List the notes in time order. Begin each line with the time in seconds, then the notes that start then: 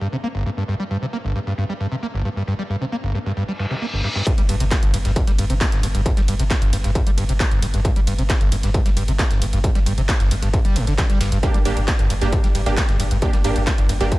0.01 G2, closed hi-hat
0.13 C3
0.23 A#3, closed hi-hat
0.35 G1
0.46 G2, closed hi-hat
0.57 G2
0.68 G2, closed hi-hat
0.80 G3
0.91 G2, closed hi-hat
1.02 C3
1.13 A#3, closed hi-hat
1.25 G1
1.36 G2, closed hi-hat
1.47 G2, snare
1.58 G2, closed hi-hat
1.69 G3, snare
1.80 G2, closed hi-hat
1.92 C3
2.03 A#3, closed hi-hat
2.14 G1, snare
2.25 G2, closed hi-hat
2.36 G2
2.47 G2, closed hi-hat
2.59 G3, snare
2.70 G2, closed hi-hat
2.81 C3
2.92 A#3, closed hi-hat
3.04 G1, closed hi-hat
3.15 G2, closed hi-hat
3.26 G2, snare
3.37 G2, closed hi-hat, reverse cymbal
3.48 G3
3.59 G2, snare, closed hi-hat
3.65 snare, closed hi-hat
3.71 C3, snare, closed hi-hat
3.76 snare, closed hi-hat
3.82 A#3, closed hi-hat
3.93 G1
4.04 G2, snare, closed hi-hat
4.15 G2, snare, closed hi-hat
4.27 G2, kick, closed hi-hat, ride, impact
4.38 G1 G3, closed hi-hat
4.49 G1 G2, closed hi-hat, open hi-hat, ride
4.60 G1 C3, closed hi-hat
4.71 A#3, kick, snare, clap, closed hi-hat, ride
4.83 G1, closed hi-hat
4.94 G1 G2, closed hi-hat, open hi-hat, ride
5.05 G1 G2, snare, closed hi-hat
5.16 G2, kick, closed hi-hat, ride
5.27 G1 G3, snare, closed hi-hat
5.38 G1 G2, closed hi-hat, open hi-hat, ride
5.50 G1 C3, closed hi-hat
5.61 A#3, kick, snare, clap, closed hi-hat, ride
5.72 G1, snare, closed hi-hat
5.83 G1 G2, closed hi-hat, open hi-hat, ride
5.95 G1 G2, closed hi-hat
6.06 G2, kick, closed hi-hat, ride
6.17 G1 G3, snare, closed hi-hat
6.28 G1 G2, closed hi-hat, open hi-hat, ride
6.39 G1 C3, closed hi-hat
6.50 A#3, kick, snare, clap, closed hi-hat, ride
6.62 G1, closed hi-hat
6.73 G1 G2, closed hi-hat, open hi-hat, ride
6.84 G1 G2, snare, closed hi-hat
6.95 G2, kick, closed hi-hat, ride
7.07 G1 G3, closed hi-hat
7.18 G1 G2, closed hi-hat, open hi-hat, ride
7.29 G1 C3, closed hi-hat
7.40 A#3, kick, snare, clap, closed hi-hat, ride
7.51 G1, closed hi-hat
7.62 G1 G2, closed hi-hat, open hi-hat, ride
7.74 G1 G2, closed hi-hat
7.85 G2, kick, closed hi-hat, ride
7.96 G1 G3, closed hi-hat
8.07 G1 G2, closed hi-hat, open hi-hat, ride
8.18 G1 C3, closed hi-hat
8.30 A#3, kick, snare, clap, closed hi-hat, ride
8.41 G1, closed hi-hat
8.52 G1 G2, closed hi-hat, open hi-hat, ride
8.63 G1 G2, snare, closed hi-hat
8.74 G2, kick, closed hi-hat, ride
8.86 G1 G3, snare, closed hi-hat
8.97 G1 G2, closed hi-hat, open hi-hat, ride
9.08 G1 C3, closed hi-hat
9.19 A#3, kick, snare, clap, closed hi-hat, ride
9.31 G1, snare, closed hi-hat
9.42 G1 G2, closed hi-hat, open hi-hat, ride
9.53 G1 G2, closed hi-hat
9.64 G2, kick, closed hi-hat, ride
9.75 G1 G3, snare, closed hi-hat
9.86 G1 G2, closed hi-hat, open hi-hat, ride
9.98 G1 C3, closed hi-hat
10.09 A#3, kick, snare, clap, closed hi-hat, ride
10.20 G1, closed hi-hat
10.31 G1 G2, closed hi-hat, open hi-hat, ride
10.42 G1 G2, snare, closed hi-hat
10.53 G2, kick, closed hi-hat, ride
10.65 G1 G3, closed hi-hat
10.76 G1 G#2, closed hi-hat, open hi-hat, ride
10.87 G1 D3, closed hi-hat
10.98 D3, kick, snare, clap, closed hi-hat, ride
11.10 G1 G3, closed hi-hat
11.21 G1 G2, snare, closed hi-hat, open hi-hat, ride
11.32 G1 G2, closed hi-hat
11.43 G2 A#3 D4 G4, kick, closed hi-hat, ride
11.54 G1 G3, closed hi-hat
11.65 G1 G2 A#3 D4 G4, closed hi-hat, open hi-hat, ride
11.77 G1 G2, closed hi-hat
11.88 A#3, kick, snare, clap, closed hi-hat, ride
11.99 G1, closed hi-hat
12.10 G1 G2, closed hi-hat, open hi-hat, ride
12.21 G1 G2 A#3 D4 G4, snare, closed hi-hat
12.33 G2, kick, closed hi-hat, ride
12.44 G1 G3, snare, closed hi-hat
12.55 G1 G2, closed hi-hat, open hi-hat, ride
12.66 G1 G2 A#3 D4 G4, closed hi-hat
12.77 A#3, kick, snare, clap, closed hi-hat, ride
12.89 G1, snare, closed hi-hat
13.00 G1 G2, closed hi-hat, open hi-hat, ride
13.11 G1 G2, closed hi-hat
13.22 G2 A#3 D4 G4, kick, closed hi-hat, ride
13.33 G1 G3, snare, closed hi-hat
13.44 G1 G2 A#3 D4 G4, closed hi-hat, open hi-hat, ride
13.56 G1 G2, closed hi-hat
13.67 A#3, kick, snare, clap, closed hi-hat, ride
13.78 G1, closed hi-hat
13.89 G1 G2, closed hi-hat, open hi-hat, ride
14.01 G1 G2 A#3 D4 G4, snare, closed hi-hat
14.12 G2, kick, closed hi-hat, ride